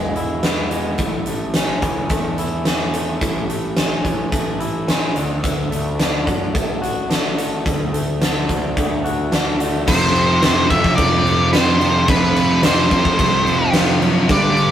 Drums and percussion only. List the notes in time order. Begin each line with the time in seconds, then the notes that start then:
0.16 closed hi-hat
0.43 snare, closed hi-hat
0.71 closed hi-hat
0.98 kick, closed hi-hat
1.26 closed hi-hat
1.54 snare, closed hi-hat
1.82 kick, closed hi-hat
2.09 kick, closed hi-hat
2.38 closed hi-hat
2.65 snare, closed hi-hat
2.93 closed hi-hat
3.21 kick, closed hi-hat
3.49 closed hi-hat
3.77 snare, closed hi-hat
4.05 kick, closed hi-hat
4.32 kick, closed hi-hat
4.60 closed hi-hat
4.88 snare, closed hi-hat
5.16 closed hi-hat
5.44 kick, closed hi-hat
5.72 closed hi-hat
6.00 snare, closed hi-hat
6.27 kick, closed hi-hat
6.55 kick, closed hi-hat
6.83 closed hi-hat
7.11 snare, closed hi-hat
7.38 closed hi-hat
7.66 kick, closed hi-hat
7.94 closed hi-hat
8.22 snare, closed hi-hat
8.49 kick, closed hi-hat
8.77 kick, closed hi-hat
9.05 closed hi-hat
9.32 snare, closed hi-hat
9.60 closed hi-hat
9.88 kick, crash
10.16 crash
10.43 snare, crash
10.71 kick, crash
10.84 kick, snare
10.98 kick, crash
11.27 crash
11.53 snare, crash
11.81 crash
12.08 kick, crash
12.36 crash
12.63 snare, crash
12.91 kick, crash
13.05 kick
13.19 kick, crash
13.47 crash
13.74 snare, crash
14.02 crash
14.29 kick, crash
14.57 crash